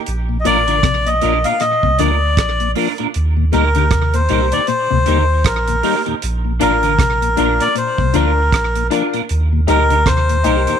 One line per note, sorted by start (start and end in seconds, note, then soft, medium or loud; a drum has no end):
0.06 0.44 A#1 loud
0.06 closed hi-hat medium
0.29 0.37 A#2 medium
0.40 0.46 D#5 medium
0.45 0.82 A1 medium
0.45 0.64 A#2 medium
0.45 0.57 F3 medium
0.45 0.60 A#3 medium
0.45 0.57 A#3 medium
0.45 0.57 D4 medium
0.45 0.60 D4 medium
0.45 0.60 F4 medium
0.45 0.61 A#4 loud
0.45 1.09 D5 loud
0.45 closed hi-hat medium
0.67 0.81 D3 medium
0.67 0.76 A#3 soft
0.67 0.76 D4 medium
0.67 0.76 F4 medium
0.67 0.75 A#4 medium
0.67 closed hi-hat medium
0.83 1.20 A#1 loud
0.83 1.03 C3 medium
0.83 kick loud
0.83 cross-stick loud
0.83 closed hi-hat medium
1.06 1.14 A#2 medium
1.06 1.46 D#5 medium
1.06 closed hi-hat medium
1.21 1.45 A#1 loud
1.21 1.41 A#2 medium
1.21 1.34 F3 medium
1.21 1.36 A#3 medium
1.21 1.34 A#3 medium
1.21 1.37 D4 medium
1.21 1.34 D4 medium
1.21 1.37 F4 medium
1.21 1.37 A#4 medium
1.21 closed hi-hat medium
1.44 1.53 A#2 medium
1.44 1.54 A#3 medium
1.44 1.53 D4 medium
1.44 1.53 F4 medium
1.44 1.53 A#4 medium
1.44 1.61 F5 loud
1.44 closed hi-hat medium
1.60 1.79 A#2 medium
1.60 2.00 D#5 loud
1.60 cross-stick medium
1.60 closed hi-hat medium
1.83 1.98 C2 medium
1.83 1.91 A#2 medium
1.83 1.96 C3 medium
1.83 kick medium
1.98 2.36 D2 medium
1.98 2.18 D3 medium
1.98 2.11 F3 medium
1.98 2.14 A#3 medium
1.98 2.11 A#3 medium
1.98 2.14 D4 medium
1.98 2.11 D4 medium
1.98 2.14 F4 medium
1.98 2.14 A#4 medium
1.98 2.71 D5 medium
1.98 closed hi-hat medium
2.37 2.74 A#1 medium
2.37 kick loud
2.37 cross-stick loud
2.37 closed hi-hat medium
2.60 2.69 A#2 medium
2.60 closed hi-hat medium
2.75 2.88 F3 medium
2.75 2.90 A#3 medium
2.75 2.88 A#3 medium
2.75 2.91 D4 medium
2.75 2.88 D4 medium
2.75 2.91 F4 medium
2.75 2.91 A#4 medium
2.75 open hi-hat medium
2.98 3.07 A#2 medium
2.98 3.07 A#3 soft
2.98 3.07 D4 medium
2.98 3.07 F4 medium
2.98 3.06 A#4 medium
2.98 closed hi-hat soft
3.14 3.52 D#2 loud
3.14 closed hi-hat medium
3.37 3.45 D#2 medium
3.37 3.45 A#2 medium
3.52 3.90 D2 loud
3.52 3.72 A#2 medium
3.52 3.64 G3 medium
3.52 3.64 A#3 medium
3.52 3.67 A#3 medium
3.52 3.65 D#4 medium
3.52 3.68 D#4 medium
3.52 3.68 G4 medium
3.52 4.16 A#4 medium
3.52 3.68 A#4 medium
3.52 closed hi-hat medium
3.75 3.89 D3 medium
3.75 3.84 A#3 medium
3.75 3.84 D#4 medium
3.75 3.83 G4 medium
3.75 3.83 A#4 medium
3.75 closed hi-hat medium
3.91 4.28 D#2 loud
3.91 4.10 C3 medium
3.91 kick loud
3.91 cross-stick loud
3.91 closed hi-hat medium
4.14 4.22 D#2 medium
4.14 4.22 A#2 medium
4.14 4.54 C5 medium
4.14 closed hi-hat medium
4.29 4.52 C2 loud
4.29 4.48 A#2 medium
4.29 4.42 G3 medium
4.29 4.44 A#3 medium
4.29 4.42 A#3 medium
4.29 4.45 D#4 medium
4.29 4.42 D#4 medium
4.29 4.45 G4 medium
4.29 4.45 A#4 medium
4.29 closed hi-hat medium
4.52 4.61 D#2 medium
4.52 4.61 A#2 medium
4.52 4.61 A#3 medium
4.52 4.61 D#4 medium
4.52 4.60 G4 medium
4.52 4.60 A#4 medium
4.52 4.67 D5 loud
4.52 closed hi-hat medium
4.67 4.87 A#2 medium
4.67 5.47 C5 loud
4.67 closed hi-hat medium
4.91 5.06 D2 medium
4.91 4.99 D#2 medium
4.91 4.99 A#2 medium
4.91 5.04 C3 medium
5.06 5.44 D#2 loud
5.06 5.25 D3 medium
5.06 5.19 G3 medium
5.06 5.21 A#3 medium
5.06 5.19 A#3 medium
5.06 5.22 D#4 medium
5.06 5.19 D#4 medium
5.06 5.22 G4 medium
5.06 5.22 A#4 medium
5.06 closed hi-hat medium
5.44 5.82 A#1 medium
5.44 6.02 A#4 medium
5.44 kick loud
5.44 cross-stick loud
5.44 closed hi-hat medium
5.68 5.76 D#2 medium
5.68 5.76 A#2 soft
5.68 closed hi-hat medium
5.83 5.95 G3 medium
5.83 5.98 A#3 medium
5.83 5.95 A#3 medium
5.83 5.98 D#4 medium
5.83 5.96 D#4 medium
5.83 5.99 G4 medium
5.83 5.99 A#4 medium
5.83 open hi-hat medium
6.05 6.14 D#2 medium
6.05 6.15 A#2 medium
6.05 6.14 A#3 soft
6.05 6.14 D#4 medium
6.05 6.14 G4 medium
6.05 6.14 A#4 medium
6.05 closed hi-hat medium
6.22 6.59 A#1 loud
6.22 closed hi-hat medium
6.45 6.53 A#2 medium
6.59 6.98 A1 medium
6.59 6.79 A#2 medium
6.59 6.72 F3 medium
6.59 6.75 A#3 medium
6.59 6.72 A#3 medium
6.59 6.83 D4 medium
6.59 6.75 D4 medium
6.59 6.72 D4 medium
6.59 6.84 F4 medium
6.59 6.75 F4 loud
6.59 6.76 A#4 medium
6.59 6.84 A#4 loud
6.59 7.64 A#4 medium
6.59 closed hi-hat medium
6.83 6.96 D3 medium
6.83 6.92 A#3 medium
6.83 6.92 D4 medium
6.83 6.91 F4 medium
6.83 6.91 A#4 medium
6.83 closed hi-hat soft
6.98 7.36 A#1 loud
6.98 7.17 C3 medium
6.98 kick loud
6.98 cross-stick loud
6.98 closed hi-hat medium
7.22 7.30 A#2 medium
7.22 closed hi-hat medium
7.37 7.60 A#1 medium
7.37 7.56 A#2 medium
7.37 7.49 F3 medium
7.37 7.49 A#3 medium
7.37 7.52 A#3 medium
7.37 7.60 D4 medium
7.37 7.49 D4 medium
7.37 7.52 D4 medium
7.37 7.59 F4 medium
7.37 7.52 F4 medium
7.37 7.59 A#4 medium
7.37 7.53 A#4 medium
7.37 closed hi-hat medium
7.60 7.68 A#2 medium
7.60 7.69 A#3 soft
7.60 7.68 D4 soft
7.60 7.66 F4 soft
7.60 7.68 F4 soft
7.60 7.68 A#4 medium
7.60 7.66 A#4 soft
7.60 7.75 D5 loud
7.60 closed hi-hat medium
7.75 7.94 A#2 medium
7.75 8.16 C5 medium
7.75 closed hi-hat medium
7.98 8.14 C2 medium
7.98 8.07 A#2 medium
7.98 8.11 C3 medium
7.98 kick medium
8.14 8.51 D2 medium
8.14 8.33 D3 medium
8.14 8.26 F3 medium
8.14 8.29 A#3 medium
8.14 8.26 A#3 medium
8.14 8.37 D4 medium
8.14 8.29 D4 medium
8.14 8.26 D4 medium
8.14 8.38 F4 medium
8.14 8.29 F4 loud
8.14 8.38 A#4 medium
8.14 8.87 A#4 medium
8.14 8.30 A#4 loud
8.14 closed hi-hat medium
8.52 8.90 A#1 medium
8.52 kick loud
8.52 cross-stick loud
8.52 closed hi-hat medium
8.75 8.84 A#2 medium
8.75 closed hi-hat medium
8.90 9.03 F3 medium
8.90 9.05 A#3 medium
8.90 9.03 A#3 medium
8.90 9.14 D4 medium
8.90 9.06 D4 medium
8.90 9.03 D4 medium
8.90 9.14 F4 medium
8.90 9.06 F4 medium
8.90 9.15 A#4 medium
8.90 9.06 A#4 medium
8.90 closed hi-hat medium
9.13 9.22 A#2 medium
9.13 9.22 A#3 soft
9.13 9.22 D4 soft
9.13 9.21 F4 medium
9.13 9.21 A#4 medium
9.13 closed hi-hat medium
9.29 9.66 D#2 loud
9.29 closed hi-hat medium
9.53 9.60 D#2 medium
9.53 9.61 A#2 medium
9.67 10.05 D2 medium
9.67 9.86 A#2 medium
9.67 9.79 G3 medium
9.67 9.82 A#3 medium
9.67 9.80 A#3 medium
9.67 9.91 D#4 medium
9.67 9.80 D#4 medium
9.67 9.83 D#4 medium
9.67 9.91 G4 medium
9.67 9.83 G4 medium
9.67 9.91 A#4 loud
9.67 9.83 A#4 medium
9.67 10.08 A#4 loud
9.67 closed hi-hat medium
9.90 10.03 D3 medium
9.90 9.99 A#3 soft
9.90 9.99 D#4 medium
9.90 9.99 G4 medium
9.90 9.98 A#4 medium
9.90 closed hi-hat medium
10.06 10.43 D#2 loud
10.06 10.25 C3 medium
10.06 10.79 C5 loud
10.06 kick loud
10.06 cross-stick loud
10.06 closed hi-hat medium
10.29 10.38 D#2 medium
10.29 10.37 A#2 medium
10.29 closed hi-hat medium
10.44 10.67 C2 medium
10.44 10.63 A#2 medium
10.44 10.57 G3 medium
10.44 10.59 A#3 medium
10.44 10.57 A#3 medium
10.44 10.67 D#4 medium
10.44 10.60 D#4 medium
10.44 10.57 D#4 medium
10.44 10.66 G4 medium
10.44 10.60 G4 medium
10.44 10.66 A#4 medium
10.44 10.60 A#4 medium
10.44 closed hi-hat medium
10.67 10.76 D#2 medium
10.67 10.76 A#2 medium
10.67 10.76 A#3 soft
10.67 10.76 D#4 medium
10.67 10.74 G4 soft
10.67 10.76 G4 medium
10.67 10.75 A#4 medium
10.67 10.74 A#4 soft
10.67 closed hi-hat medium